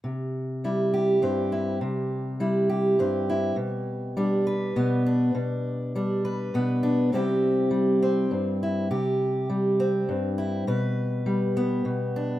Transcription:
\new Staff \with { instrumentName = "Steel-string acoustic guitar" } { \time 6/8 \key c \lydian \tempo 4. = 68 << { r4 e'8 g'8 c'8 e'8 | r4 e'8 g'8 c'8 e'8 | r4 d'8 b'8 b8 d'8~ | d'4 d'8 b'8 b8 d'8 |
<g c' e' g'>4. c'4 e'8 | g'4. c'4 e'8 | b'4. b4 d'8 | } \\ { c4 g4 g,4 | c4 g4 g,4 | b,4 g4 b,4 | b,4 g4 b,4 |
c4 g4 g,4 | c4 g4 g,4 | b,4 g4 b,4 | } >> }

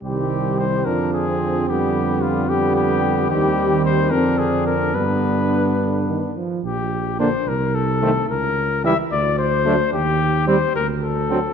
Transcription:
<<
  \new Staff \with { instrumentName = "Trumpet" } { \time 6/8 \key g \phrygian \tempo 4. = 73 g'4 c''8 bes'8 aes'4 | g'4 f'8 g'8 g'4 | g'4 c''8 bes'8 aes'8 bes'8 | b'2~ b'8 r8 |
\key g \minor g'4 c''8 bes'8 a'4 | ais'4 e''8 d''8 c''4 | g'4 c''8 bes'8 a'4 | }
  \new Staff \with { instrumentName = "Flugelhorn" } { \time 6/8 \key g \phrygian c'4. d'8. c'8. | b4. b4. | c'4. d'4. | d'2~ d'8 r8 |
\key g \minor r4 d'16 r4 r16 c'16 r16 | r4 e'16 r4 r16 d'16 r16 | r4 c'16 r4 r16 c'16 r16 | }
  \new Staff \with { instrumentName = "French horn" } { \clef bass \time 6/8 \key g \phrygian g4. f4. | g4. g4. | g4. c'4. | b2~ b8 r8 |
\key g \minor r4 bes16 r4 r16 a16 r16 | r4 g16 r4 r16 a16 r16 | r4 g16 r4 r16 fis16 r16 | }
  \new Staff \with { instrumentName = "Trombone" } { \clef bass \time 6/8 \key g \phrygian ees4. d4. | d4. d4. | ees4. d4. | d4. d8 ees8 f8 |
\key g \minor r4 d16 r4 r16 ees16 r16 | r4 e16 r4 r16 fis16 r16 | r4 g16 r4 r16 d16 r16 | }
  \new Staff \with { instrumentName = "Tuba" } { \clef bass \time 6/8 \key g \phrygian c,4. f,4.~ | f,2. | ees,4. f,4. | g,2~ g,8 r8 |
\key g \minor bes,,4. c,4. | cis,4. d,4. | ees,4. d,4. | }
>>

